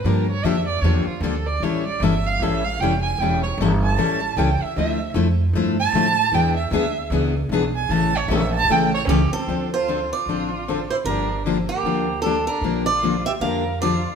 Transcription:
X:1
M:4/4
L:1/8
Q:"Swing" 1/4=153
K:Aphr
V:1 name="Violin"
B ^c e d c F A d | ^c d e f e f g ^g | g ^c z a3 g e | e2 z3 a3 |
g e e2 z3 ^g | a ^c e a g c ^C =C- | [K:Dm] C F2 F4 E | D2 z B,3 D D- |
D F2 G B2 F2 |]
V:2 name="Steel-string acoustic guitar"
z8 | z8 | z8 | z8 |
z8 | z6 G A- | [K:Dm] A c2 d4 c | B2 z G3 A B- |
B d2 e f2 d2 |]
V:3 name="Steel-string acoustic guitar"
[D,F,B,DG] z [D,F,B,DG] z [D,F,B,DG] z [D,F,B,DG] z | [E,G,^CEA] z [E,G,CEA] z [E,G,CEA] z [E,G,CEA] z | [E,G,^CEA] z [E,G,CEA] z [E,G,CEA] z [E,G,CEA] z | [D,F,A,E] z [D,F,A,E] z [D,F,A,E] z [D,F,A,E] z |
[E,=B,D^G] z [E,B,DG] z [E,B,DG] z [E,B,DG] z | [^C,E,A,^CA] z [C,E,A,CA] z [C,E,A,CA] z [C,E,A,CA] z | [K:Dm] [D,F,CDA] z [D,F,CDA] z [D,F,CDA] z [D,F,CDA] z | [D,F,B,DG] z [D,F,B,DG] z [D,F,B,DG] z [D,F,B,DG] z |
[D,F,B,DG] z [D,F,B,DG] z [D,F,B,DG] z [D,F,B,DG] z |]
V:4 name="Upright bass" clef=bass
G,,2 F,,2 E,, z D,,2 | A,,,2 G,,,2 A,,,2 F,,,2 | E,,,2 G,,,2 A,,,2 ^C,, z | D,,2 F,,2 G,,2 A,,2 |
E,,2 D,,2 ^C,,2 =B,,,2 | A,,,2 B,,,2 A,,,2 ^C,, z | [K:Dm] D,,4 A,,,4 | G,,,4 D,,4 |
B,,,4 F,,4 |]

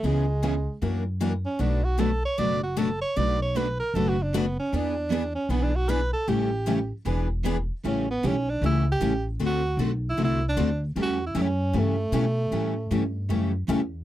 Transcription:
X:1
M:4/4
L:1/16
Q:"Swing" 1/4=154
K:Amix
V:1 name="Tenor saxophone"
^G,8 z6 C2 | D2 F2 A2 c2 d2 F2 A2 c2 | d2 c2 B2 _B2 (3A2 F2 D2 =B,2 C2 | D6 C2 (3B,2 D2 F2 B2 A2 |
G6 z8 z2 | C2 B,2 C2 D2 E2 G4 z2 | F4 z2 E2 E2 D4 z2 | F2 E2 C4 A,8- |
A,8 z8 |]
V:2 name="Steel-string acoustic guitar"
[C,^G,B,E^G]2 z2 [C,G,B,EG] z3 [F,DE^A]2 z2 [F,DEA] z3 | [B,,F,A,DFB]2 z2 [B,,F,A,DFB] z3 [B,,F,A,DFB]2 z2 [B,,F,A,DFB] z3 | [B,,F,A,DFB]2 z2 [B,,F,A,DFB] z3 [B,,F,A,DFB]2 z2 [B,,F,A,DFB] z3 | [E,B,D^GB]2 z2 [E,B,DGB] z3 [E,B,DGB]2 z2 [E,B,DGB] z3 |
[E,G,CEA]2 z2 [E,G,CEA] z3 [E,B,D^GB]2 z2 [E,B,DGB] z3 | [E,G,CEA]2 z2 [E,G,CEA] z3 [E,G,CEA]2 z2 [E,G,CEA] z3 | [D,A,=CFA]2 z2 [D,A,CFA] z3 [D,A,CFA]2 z2 [D,A,CFA] z3 | [E,G,CEA]2 z2 [E,G,CEA] z3 [E,G,CEA]2 z2 [E,G,CEA] z3 |
[E,G,CEA]2 z2 [E,G,CEA] z3 [E,G,CEA]2 z2 [E,G,CEA] z3 |]
V:3 name="Steel-string acoustic guitar"
[C,E,B,C^G]2 z2 [C,E,B,CG] z3 [E,^A,DF]2 z2 [E,A,DF] z3 | [B,,F,A,DF]2 z2 [B,,F,A,DF] z3 [B,,F,A,DF]2 z2 [B,,F,A,DF] z3 | [B,,F,A,DF]2 z2 [B,,F,A,DF] z3 [B,,F,A,DF]2 z2 [B,,F,A,DF] z3 | [E,B,D^G]2 z2 [E,B,DG] z3 [E,B,DG]2 z2 [E,B,DG] z3 |
[C,E,A,CG]2 z2 [C,E,A,CG] z3 [E,B,D^G]2 z2 [E,B,DG] z3 | [C,E,A,CG]2 z2 [C,E,A,CG] z3 [C,E,A,CG]2 z2 [C,E,A,CG] z3 | [D,A,=CFA]2 z2 [D,A,CFA] z3 [D,A,CFA]2 z2 [D,A,CFA] z3 | [C,E,A,CG]2 z2 [C,E,A,CG] z3 [C,E,A,CG]2 z2 [C,E,A,CG] z3 |
[C,E,A,CG]2 z2 [C,E,A,CG] z3 [C,E,A,CG]2 z2 [C,E,A,CG] z3 |]
V:4 name="Upright bass" clef=bass
C,,8 F,,8 | B,,,8 F,,,8 | B,,,8 F,,,8 | E,,8 B,,,8 |
A,,,8 E,,,8 | A,,,4 B,,,4 C,,4 A,,,4 | D,,4 B,,,4 =C,,4 D,,4 | E,,4 F,,4 G,,4 B,,4 |
A,,4 G,,4 F,,4 E,,4 |]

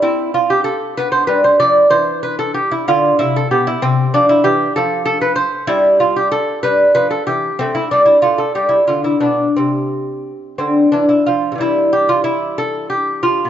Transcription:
X:1
M:6/8
L:1/16
Q:3/8=63
K:C
V:1 name="Lute"
E2 F G A2 B c B c d2 | c2 B A G E F2 E A G E | C2 D E G2 A2 A B c2 | E2 F G A2 B2 B A G2 |
C E D E F A G E F E D2 | C6 C2 D E F2 | E2 G F E2 A2 G2 F2 |]
V:2 name="Lute" clef=bass
C6 B,2 G,2 F,2 | E,6 D,2 C,2 B,,2 | C,2 F,2 E,2 F,6 | G,6 G,2 F,2 E,2 |
A,2 G,2 A,2 G,2 D,2 B,,2 | C,6 D,2 E,2 F,2 | [C,E,G,]12 |]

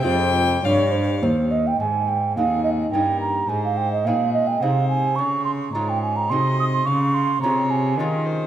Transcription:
X:1
M:3/4
L:1/16
Q:1/4=107
K:Fm
V:1 name="Flute"
c4 d2 c2 c2 e g | [K:Ab] a2 g2 f2 e2 g2 b2 | a f g e f2 e g f2 a2 | d'2 c'2 b g a b c'2 e' c' |
d'2 c'2 b2 a2 z4 |]
V:2 name="Violin"
g4 f6 z2 | [K:Ab] z4 A4 B4 | c4 A4 c4 | d4 d4 e4 |
f4 d4 B2 c2 |]
V:3 name="Lute"
[A,CF]12 | [K:Ab] z4 [A,CE]4 [B,DE]4 | z4 [A,CE]4 [A,CE]4 | z4 [A,DF]4 [A,E_G]4 |
z4 [A,DF]4 [A,DF]4 |]
V:4 name="Lute" clef=bass
F,,4 G,,4 E,,4 | [K:Ab] A,,4 E,,4 G,,4 | A,,4 B,,4 C,4 | D,4 A,,4 C,4 |
D,4 C,4 E,4 |]
V:5 name="Cello" clef=bass
F,,4 G,,4 E,,4 | [K:Ab] A,,4 E,,4 G,,4 | A,,4 B,,4 C,4 | D,4 A,,4 C,4 |
D,4 C,4 E,4 |]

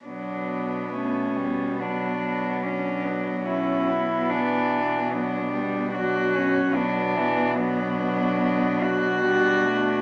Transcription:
X:1
M:4/4
L:1/8
Q:1/4=72
K:Bm
V:1 name="Cello"
B,4 D2 C B, | E2 D2 B,2 F2 | D2 B,2 B, F3 |]
V:2 name="Cello"
D2 C2 B,2 D2 | C B,3 D2 D C | B,2 D4 D2 |]
V:3 name="Cello" clef=bass
F,2 A, G, F, F,3- | F,2 E,2 F, G, F,2 | F, E, F,4 G, A, |]
V:4 name="Cello" clef=bass
B,,8 | B,,8 | B,,8 |]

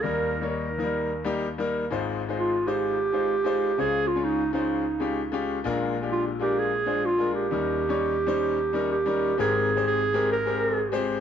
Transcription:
X:1
M:4/4
L:1/16
Q:"Swing" 1/4=128
K:Ab
V:1 name="Clarinet"
B4 B8 z4 | z4 F2 G8- G2 | A2 F2 E2 E8 z2 | z4 F2 G2 A4 F2 G2- |
G12 G4 | A4 A4 B6 z2 |]
V:2 name="Grand piano"
[G,B,EB]2 z [G,B,Ed]2 z [F,G,B,EB]3 z [G,B,EG]2 z [G,B,EB]2 z | [A,EFc]2 z [A,EFc]2 z [A,EFc]3 z [A,EFc]2 z [A,EFc]2 z | [A,DFc]2 z [A,DFd]2 z [A,DFc]3 z [A,DFG]2 z [A,DFG]2 z | [A,=DFB]2 z [A,DFG]2 z [A,DFB]3 z [A,DFc]2 z [A,DFB]2 z |
[G,DEB]2 z [G,DEd]2 z [G,DEc]3 z [G,DEB]2 z [G,DEB]2 z | [A,CGB]2 z [A,CGc]2 z [A,CGB]2 z [A,CGB]3 z [A,CGc]2 z |]
V:3 name="Grand piano" clef=bass
[E,,E,]16 | [A,,,A,,]16 | [D,,D,]16 | [B,,,B,,]16 |
[E,,E,]16 | [A,,,A,,]16 |]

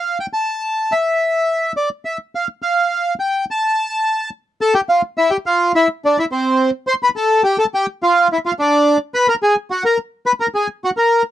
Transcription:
X:1
M:4/4
L:1/16
Q:1/4=106
K:Am
V:1 name="Bandoneon"
f g a4 e6 d2 e2 | f2 f4 g2 a6 z2 | [Aa] [Gg] [Ff]2 [Ee] [Gg] [Ff]2 [Ee]2 [Dd] [Ee] [Cc]3 z | [cc'] [Bb] [Aa]2 [Gg] [Aa] [Gg]2 [Ff]2 [Ee] [Ff] [Dd]3 z |
[Bb] [_B_b] [^G^g]2 [^F^f] [Bb]2 z [=B=b] [_B_b] [Gg]2 [Ff] [Bb]2 z |]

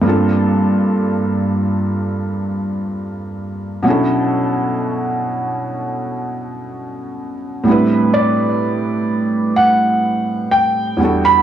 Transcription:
X:1
M:4/4
L:1/16
Q:"Swing 16ths" 1/4=63
K:Ador
V:1 name="Grand piano"
z16 | z16 | z2 d6 f4 g3 b |]
V:2 name="Felt piano"
[G,,_B,CD=FA]16 | [B,,F,^CDEA]16 | [A,,G,B,CDEB]12- [A,,G,B,CDEB]2 [E,,G,B,DFA]2 |]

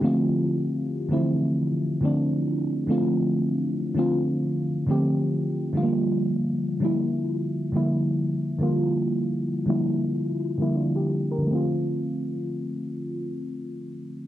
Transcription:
X:1
M:4/4
L:1/16
Q:"Swing 16ths" 1/4=84
K:Dm
V:1 name="FM electric piano"
[EG] z12 z3 | z16 | z16 | z12 [DF] [EG]2 [GB]- |
[GB] z12 z3 |]
V:2 name="FM electric piano"
[D,F,A,CF]4- [D,F,A,CF] z [D,E,F,A,CE]4 z [D,F,A,CD]4 z | [D,F,A,CF]4- [D,F,A,CF] z [D,F,A,CF]4 z [D,F,A,CG]4 z | [D,F,G,A,B,F]4- [D,F,G,A,B,F] z [D,F,G,B,E]4 z [D,F,G,B,E]4 z | [D,F,G,B,F]4- [D,F,G,B,F] z [D,F,G,B,E]4 z [D,F,G,B,E]4 z |
[D,F,A,CF]16 |]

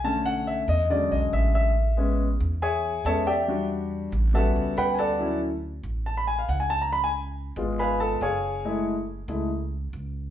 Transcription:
X:1
M:4/4
L:1/16
Q:1/4=140
K:A
V:1 name="Grand piano"
a2 f2 e2 ^d2 =d2 ^d2 e2 e2- | e4 z4 [Gceg]4 [Acea]2 [=Gde=g]2- | [=Gde=g]2 z6 [Aefa]4 [Bfgb]2 [Adf^ga]2- | [Adfga]2 z6 a b g =f ^f g a _b |
b g z6 [B^egb]2 [Aa]2 [Gceg]4- | [Gc^eg]2 z12 z2 |]
V:2 name="Grand piano"
[D,A,C]6 z2 [D,F,G,C]8 | z2 [G,B,C]2 z8 [G,B,C]2 z2 | [=G,DF]6 z2 [G,B,CF]8 | [F,CE]2 z12 z2 |
z6 [G,B,^E]6 z4 | [G,A,E]2 z4 [G,A,E]2 z8 |]
V:3 name="Upright bass" clef=bass
B,,,6 E,,4 B,,,2 A,,,4- | A,,,6 E,,6 E,,4- | E,,6 A,,,4 C,,2 D,,4- | D,,6 A,,,6 C,,4- |
C,,6 G,,,6 F,,,4- | F,,,6 C,,6 C,,4 |]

